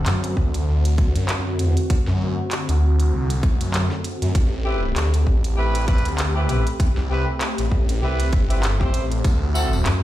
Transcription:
0.00 4.31 D3 medium
0.00 10.03 A3 medium
0.00 4.31 C4 medium
0.00 4.31 F#4 medium
0.06 0.35 F#2 loud
0.06 clap loud
0.06 closed hi-hat medium
0.24 closed hi-hat medium
0.37 0.65 D2 medium
0.37 kick medium
0.54 closed hi-hat soft
0.68 1.13 D2 loud
0.85 closed hi-hat medium
0.98 kick loud
0.98 closed hi-hat soft
1.16 1.57 F#2 medium
1.16 closed hi-hat medium
1.29 clap loud
1.29 closed hi-hat medium
1.57 1.74 F2 medium
1.57 closed hi-hat medium
1.77 closed hi-hat soft
1.90 kick loud
1.90 closed hi-hat medium
2.07 2.18 F#2 medium
2.07 snare soft
2.20 2.35 F#2 medium
2.51 clap loud
2.51 closed hi-hat medium
2.69 3.10 D2 medium
2.69 closed hi-hat medium
3.00 closed hi-hat soft
3.13 3.58 C2 loud
3.30 closed hi-hat medium
3.43 kick loud
3.43 closed hi-hat soft
3.61 3.89 F#2 medium
3.61 closed hi-hat medium
3.74 clap loud
3.74 closed hi-hat medium
3.91 snare soft
4.04 closed hi-hat medium
4.22 4.33 F#2 medium
4.22 closed hi-hat medium
4.35 4.94 A1 medium
4.35 10.03 C4 medium
4.35 9.21 G4 medium
4.35 kick loud
4.35 closed hi-hat medium
4.65 4.83 C4 medium
4.65 4.83 E4 medium
4.65 4.83 G4 medium
4.65 4.83 B4 medium
4.96 5.25 D2 medium
4.96 clap loud
4.96 closed hi-hat medium
5.14 closed hi-hat soft
5.27 5.55 A1 medium
5.27 kick medium
5.44 closed hi-hat medium
5.57 6.03 A1 loud
5.57 5.85 C4 medium
5.57 5.85 E4 medium
5.57 5.85 G4 medium
5.57 5.85 B4 medium
5.75 closed hi-hat medium
5.88 6.05 C4 medium
5.88 6.05 E4 medium
5.88 6.05 G4 medium
5.88 6.05 B4 loud
5.88 kick loud
5.88 closed hi-hat soft
5.98 closed hi-hat soft
6.05 6.64 D2 medium
6.05 closed hi-hat medium
6.08 closed hi-hat soft
6.18 clap loud
6.18 closed hi-hat medium
6.36 6.47 C4 medium
6.36 6.47 E4 medium
6.36 6.47 G4 medium
6.36 6.47 B4 medium
6.49 6.66 C4 medium
6.49 6.66 E4 medium
6.49 6.66 G4 medium
6.49 6.66 B4 medium
6.49 closed hi-hat medium
6.67 closed hi-hat soft
6.80 kick loud
6.80 closed hi-hat medium
6.97 7.08 C2 medium
6.97 snare soft
7.10 7.25 C2 medium
7.10 7.27 C4 medium
7.10 7.27 E4 medium
7.10 7.27 G4 medium
7.10 7.27 B4 medium
7.41 clap loud
7.41 closed hi-hat medium
7.58 8.00 A1 loud
7.58 closed hi-hat medium
7.72 kick medium
7.89 closed hi-hat soft
8.02 8.31 C2 medium
8.02 8.27 C4 medium
8.02 8.27 E4 medium
8.02 8.27 G4 medium
8.02 8.27 B4 medium
8.20 closed hi-hat medium
8.33 8.92 G1 loud
8.33 kick loud
8.33 closed hi-hat soft
8.50 8.63 C4 medium
8.50 8.63 E4 medium
8.50 8.63 G4 medium
8.50 8.63 B4 medium
8.50 closed hi-hat medium
8.63 clap loud
8.63 closed hi-hat medium
8.81 9.04 C4 medium
8.81 9.04 E4 medium
8.81 9.04 G4 medium
8.81 9.04 C5 medium
8.81 kick medium
8.81 snare soft
8.93 9.22 A1 medium
8.93 closed hi-hat medium
9.12 closed hi-hat soft
9.24 9.84 D2 loud
9.24 10.03 D3 medium
9.24 10.03 F#4 medium
9.24 kick loud
9.24 closed hi-hat medium
9.24 tambourine soft
9.55 9.72 C4 medium
9.55 9.72 E4 medium
9.55 9.72 F#4 medium
9.55 9.72 A4 medium
9.55 tambourine medium
9.73 tambourine medium
9.86 10.03 F#2 medium
9.86 clap loud
9.86 closed hi-hat medium
9.86 tambourine soft

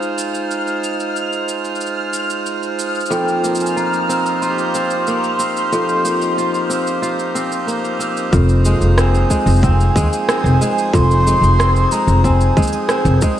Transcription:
0.00 3.11 G#3 medium
0.00 13.40 D#4 medium
0.00 4.95 F4 medium
0.00 13.40 C5 medium
0.00 8.35 F6 medium
0.00 shaker soft
0.18 shaker medium
0.35 shaker soft
0.51 shaker soft
0.67 shaker soft
0.84 shaker medium
1.00 shaker soft
1.16 shaker soft
1.33 shaker soft
1.49 shaker medium
1.65 shaker soft
1.75 shaker soft
1.81 shaker soft
1.86 shaker soft
2.13 shaker medium
2.30 shaker soft
2.46 shaker soft
2.63 shaker soft
2.79 shaker medium
2.95 shaker soft
3.00 shaker soft
3.06 shaker soft
3.10 5.44 F2 medium
3.10 13.40 F3 medium
3.10 3.56 G5 medium
3.10 shaker soft
3.23 10.42 A#3 medium
3.28 shaker soft
3.44 5.07 A#3 medium
3.44 shaker medium
3.55 shaker medium
3.60 3.79 G#5 medium
3.60 shaker soft
3.66 shaker soft
3.76 4.42 F4 medium
3.76 4.43 A#5 medium
3.76 shaker soft
3.94 shaker soft
4.09 4.74 C4 medium
4.09 shaker medium
4.26 shaker soft
4.42 6.36 F4 medium
4.42 7.68 C6 loud
4.42 shaker soft
4.49 8.33 G4 medium
4.58 shaker soft
4.75 5.39 C4 medium
4.75 shaker medium
4.91 shaker soft
5.07 6.04 A#3 medium
5.07 shaker soft
5.24 shaker soft
5.39 6.69 C4 medium
5.39 shaker medium
5.57 shaker soft
5.72 8.06 F2 medium
5.72 shaker soft
5.89 shaker soft
6.05 7.67 A#3 medium
6.05 shaker medium
6.22 shaker soft
6.38 7.02 F4 medium
6.38 shaker soft
6.55 shaker soft
6.69 7.35 C4 medium
6.69 shaker medium
6.87 shaker soft
7.02 8.54 F4 medium
7.02 shaker soft
7.19 shaker soft
7.35 7.99 C4 medium
7.35 shaker medium
7.52 shaker soft
7.67 9.60 A#3 medium
7.67 shaker soft
7.85 shaker soft
7.99 8.97 C4 medium
7.99 shaker medium
8.17 shaker soft
8.32 8.74 F1 medium
8.32 10.66 F2 medium
8.32 kick loud
8.32 shaker soft
8.49 shaker soft
8.65 9.29 G#3 medium
8.65 shaker medium
8.81 9.23 F1 medium
8.81 shaker soft
8.98 9.62 C4 medium
8.98 9.60 G#5 medium
8.98 cross-stick loud
8.98 shaker soft
9.15 shaker soft
9.30 9.95 G#3 medium
9.30 kick medium
9.30 shaker medium
9.46 9.88 F1 medium
9.46 shaker soft
9.49 shaker soft
9.52 shaker soft
9.54 shaker soft
9.56 shaker soft
9.59 13.40 G#4 medium
9.59 shaker soft
9.61 10.28 C4 medium
9.61 10.95 G#5 medium
9.61 kick loud
9.61 shaker soft
9.64 shaker soft
9.80 shaker soft
9.96 10.07 D#2 medium
9.96 10.60 G#3 medium
9.96 kick loud
9.96 shaker medium
10.13 shaker soft
10.28 11.58 C4 medium
10.28 cross-stick loud
10.28 shaker soft
10.44 10.56 F1 medium
10.44 shaker soft
10.61 11.25 G#3 medium
10.61 shaker medium
10.78 shaker soft
10.93 11.35 F1 loud
10.93 13.27 F2 medium
10.93 11.94 C6 loud
10.93 kick loud
10.93 shaker soft
11.11 shaker soft
11.26 11.91 G#3 medium
11.26 shaker medium
11.41 11.83 F1 medium
11.41 shaker soft
11.59 12.24 C4 medium
11.59 cross-stick loud
11.59 shaker soft
11.76 shaker soft
11.92 12.56 G#3 medium
11.92 12.24 A#5 loud
11.92 shaker medium
12.07 12.49 F1 medium
12.07 shaker soft
12.24 12.89 C4 medium
12.24 13.18 G#5 medium
12.24 kick medium
12.24 shaker soft
12.41 shaker soft
12.57 12.68 D#2 medium
12.57 13.21 G#3 medium
12.57 kick loud
12.57 shaker soft
12.63 shaker soft
12.67 shaker medium
12.73 shaker soft
12.89 13.40 C4 medium
12.89 cross-stick loud
12.89 shaker soft
13.05 13.17 F1 loud
13.05 shaker soft
13.22 13.40 G#3 medium
13.22 kick loud
13.22 shaker medium

